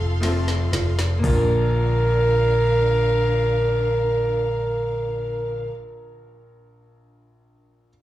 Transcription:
0.00 0.69 F1 medium
0.00 0.21 F3 medium
0.00 0.21 A3 medium
0.00 0.22 C4 medium
0.00 1.27 D#4 medium
0.00 0.18 F4 medium
0.00 0.23 F4 loud
0.00 0.23 A4 loud
0.00 1.21 A4 medium
0.00 1.21 F5 medium
0.00 1.21 C6 medium
0.21 1.18 F3 medium
0.21 0.73 F3 medium
0.21 1.19 A3 medium
0.21 1.19 C4 medium
0.21 0.73 C4 medium
0.21 1.19 F4 medium
0.21 0.73 F4 medium
0.21 snare medium
0.21 ride medium
0.25 0.71 A4 medium
0.48 snare medium
0.72 1.20 F1 medium
0.72 1.25 C4 soft
0.72 1.25 F4 medium
0.72 1.24 A4 medium
0.72 snare medium
0.72 ride medium
0.99 snare medium
1.17 5.65 A#2 medium
1.17 5.63 A#3 medium
1.23 5.67 A#1 medium
1.23 5.68 A#1 loud
1.23 5.71 D3 medium
1.23 5.74 F3 medium
1.23 5.67 D4 medium
1.23 5.68 D4 medium
1.23 5.68 A#4 medium
1.23 5.69 A#4 loud
1.23 5.68 F5 medium
1.23 kick medium
1.23 floor tom loud
1.23 open hi-hat medium
1.27 5.78 A#3 medium
1.27 5.71 F4 medium
1.34 5.82 D4 medium
1.34 5.85 A#4 medium

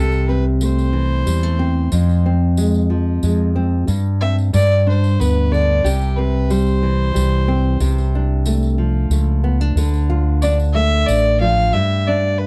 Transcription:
0.00 1.23 C2 medium
0.00 0.94 C3 medium
0.00 0.27 A4 medium
0.12 tambourine soft
0.29 1.59 C4 soft
0.29 0.44 B4 medium
0.61 1.26 A3 soft
0.61 2.22 C5 medium
0.61 tambourine medium
0.79 tambourine soft
0.93 1.88 E3 medium
1.26 1.89 E2 medium
1.26 1.43 G3 medium
1.26 tambourine medium
1.43 1.92 A3 soft
1.59 1.88 C4 medium
1.92 3.85 F2 medium
1.92 3.19 F2 medium
1.92 tambourine medium
2.09 tambourine soft
2.26 3.54 C4 medium
2.57 3.22 G#3 medium
2.57 tambourine medium
2.74 tambourine soft
2.90 3.84 F3 medium
3.23 3.85 F2 medium
3.23 3.85 G#3 soft
3.23 tambourine medium
3.56 3.85 C4 medium
3.87 4.50 G2 medium
3.87 4.51 G2 medium
3.87 tambourine medium
4.21 4.51 C4 soft
4.21 4.36 E5 medium
4.21 tambourine soft
4.38 tambourine soft
4.53 5.81 G2 medium
4.53 5.16 G2 medium
4.53 4.85 D5 medium
4.53 tambourine medium
4.71 tambourine soft
4.87 5.81 D4 soft
4.87 5.22 C5 medium
5.04 tambourine soft
5.20 5.82 D2 medium
5.20 5.81 B3 medium
5.20 5.53 B4 medium
5.20 tambourine medium
5.52 5.85 D3 medium
5.52 5.86 D5 medium
5.52 tambourine soft
5.84 7.11 C2 medium
5.84 6.83 C3 medium
5.84 6.18 G4 medium
5.84 tambourine medium
6.02 tambourine soft
6.16 7.47 C4 soft
6.16 6.52 B4 medium
6.50 7.13 G3 medium
6.50 8.14 C5 medium
6.50 tambourine medium
6.67 tambourine soft
6.83 7.77 E3 medium
7.14 7.78 C2 medium
7.14 7.80 G3 soft
7.14 tambourine medium
7.48 7.77 C4 medium
7.80 9.08 C2 loud
7.80 8.79 C3 medium
7.80 tambourine medium
7.98 tambourine soft
8.15 9.43 D4 medium
8.46 9.11 A3 medium
8.46 tambourine medium
8.63 tambourine soft
8.78 9.73 F3 medium
9.10 9.73 C#2 medium
9.10 9.73 A3 medium
9.10 tambourine medium
9.44 9.61 B3 medium
9.61 9.77 D4 medium
9.76 11.04 D2 medium
9.76 11.08 D3 medium
9.76 tambourine medium
9.94 tambourine soft
10.10 11.70 F4 medium
10.42 11.70 D4 medium
10.42 10.57 D5 medium
10.42 tambourine medium
10.60 tambourine soft
10.73 11.70 A3 medium
10.73 11.08 E5 loud
11.06 11.71 A1 medium
11.06 11.40 D5 loud
11.06 tambourine medium
11.40 11.74 F3 medium
11.40 11.75 F5 loud
11.73 12.47 G2 medium
11.73 12.09 E5 medium
12.07 12.47 D4 medium
12.07 12.40 D5 medium
12.39 12.47 B4 medium

